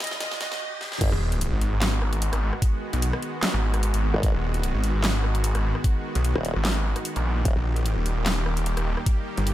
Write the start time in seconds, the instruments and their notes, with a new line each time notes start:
Already playing: supersaw synth E3 G#3 B3 G#4, riser
0.00 violin section D#5, snare, closed hi-hat
0.04 closed hi-hat
0.07 closed hi-hat
0.11 snare
0.20 violin section D#5, snare, closed hi-hat
0.31 snare
0.41 violin section D#5, snare, closed hi-hat
0.52 snare
0.81 snare
0.92 snare
1.01 wobble bass G#1, supersaw synth D#3 G#3 B3 F#4, kick, closed hi-hat, crash, sub drop
1.12 detuned saw bass D#1
1.32 closed hi-hat
1.41 closed hi-hat
1.52 detuned saw bass G#1
1.61 closed hi-hat
1.72 detuned saw bass G#1
1.82 snare, clap, closed hi-hat
2.02 cross-stick
2.13 closed hi-hat
2.22 closed hi-hat
2.33 detuned saw bass G#1, cross-stick, closed hi-hat
2.53 cross-stick
2.62 kick, closed hi-hat
2.93 detuned saw bass B1, closed hi-hat
3.02 closed hi-hat
3.13 cross-stick
3.23 closed hi-hat
3.43 snare, clap, closed hi-hat
3.54 detuned saw bass G#1
3.74 cross-stick, closed hi-hat
3.83 closed hi-hat
3.94 detuned saw bass G#1, closed hi-hat
4.14 wobble bass G#1
4.23 wobble bass G#1, kick, closed hi-hat
4.34 detuned saw bass D#1
4.54 closed hi-hat
4.63 closed hi-hat
4.74 detuned saw bass G#1
4.84 closed hi-hat
4.95 detuned saw bass G#1
5.04 snare, clap, closed hi-hat
5.24 cross-stick
5.35 closed hi-hat
5.44 closed hi-hat
5.55 detuned saw bass G#1, cross-stick, closed hi-hat
5.75 cross-stick
5.84 kick, closed hi-hat
6.15 detuned saw bass B1, closed hi-hat
6.25 closed hi-hat
6.35 wobble bass D#1, cross-stick
6.45 closed hi-hat
6.56 detuned saw bass G#1
6.65 snare, clap, closed hi-hat
6.96 cross-stick, closed hi-hat
7.05 closed hi-hat
7.16 detuned saw bass A#1, closed hi-hat
7.45 wobble bass D#1, supersaw synth G3 A#3 G4, kick, closed hi-hat
7.56 detuned saw bass A#1
7.76 closed hi-hat
7.86 closed hi-hat
7.97 detuned saw bass D#1
8.06 closed hi-hat
8.17 detuned saw bass D#1
8.26 snare, clap, closed hi-hat
8.46 cross-stick
8.57 closed hi-hat
8.66 closed hi-hat
8.77 detuned saw bass D#1, cross-stick, closed hi-hat
8.97 cross-stick
9.06 kick, closed hi-hat
9.38 detuned saw bass G1, closed hi-hat
9.47 closed hi-hat